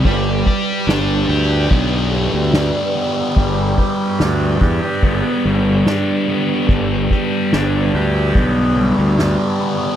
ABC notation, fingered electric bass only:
X:1
M:4/4
L:1/16
Q:1/4=72
K:G
V:1 name="Fingered electric bass" clef=bass
G,,,2 z2 G,,,2 D,,2 B,,,3 D,,2 z3 | G,,,2 z2 D,,2 E,, z G,,, z G,,,2 z4 | G,,,2 z2 G,,,2 D,,2 B,,,3 D,,2 z3 |]